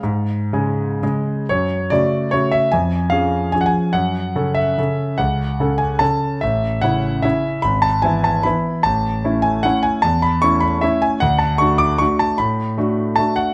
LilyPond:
<<
  \new Staff \with { instrumentName = "Grand piano" } { \time 3/4 \key fis \minor \tempo 4 = 148 eis''2 r4 | cis''4 d''4 cis''8 e''8 | gis''4 eis''4 \tuplet 3/2 { gis''16 fis''16 gis''4 } | fis''4. e''4. |
fis''4. gis''8 a''4 | e''4 fis''4 e''4 | b''8 a''8 gis''8 a''8 b''4 | a''4. gis''8 fis''8 gis''8 |
a''8 b''8 cis'''8 b''8 e''8 gis''8 | fis''8 a''8 cis'''8 d'''8 cis'''8 a''8 | b''2 a''8 fis''8 | }
  \new Staff \with { instrumentName = "Grand piano" } { \time 3/4 \key fis \minor gis,4 <cis gis gis'>4 <cis gis gis'>4 | fis,4 <cis a fis'>4 <cis a fis'>4 | eis,4 <eis cis' gis'>4 <eis cis' gis'>4 | fis,4 <cis cis' a'>4 <cis cis' a'>4 |
cis,4 <cis cis' a'>4 <cis cis' a'>4 | a,,4 <cis cis' e'>4 <cis cis' e'>4 | gis,,4 <e b e'>4 <e b e'>4 | a,,4 <a cis' e'>4 <a cis' e'>4 |
e,4 <a cis' e'>4 <a cis' e'>4 | d,4 <a d' fis'>4 <a d' fis'>4 | a,4 <a d' fis'>4 <a d' fis'>4 | }
>>